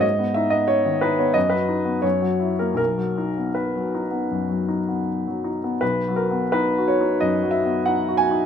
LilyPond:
<<
  \new Staff \with { instrumentName = "Upright piano" } { \time 4/4 \key b \major \tempo 4 = 86 dis''8 e''16 dis''16 cis''8 b'16 cis''16 dis''16 b'8. cis''8. ais'16 | ais'4 b'2 r4 | b'8 ais'8 b'8 cis''8 dis''8 e''8 fis''8 gis''8 | }
  \new Staff \with { instrumentName = "Upright piano" } { \time 4/4 \key b \major gis,16 b16 dis'16 b8 dis16 dis'16 b16 fis,16 fis16 dis'16 b16 fis,16 fis16 e'16 ais16 | b,,16 fis16 dis'16 b8 fis16 dis'16 b16 fis,16 fis16 dis'16 b8 fis16 dis'16 b16 | \tuplet 3/2 { b,,8 fis8 b8 dis'8 fis'8 dis'8 fis,8 fis8 b8 dis'8 fis'8 dis'8 } | }
>>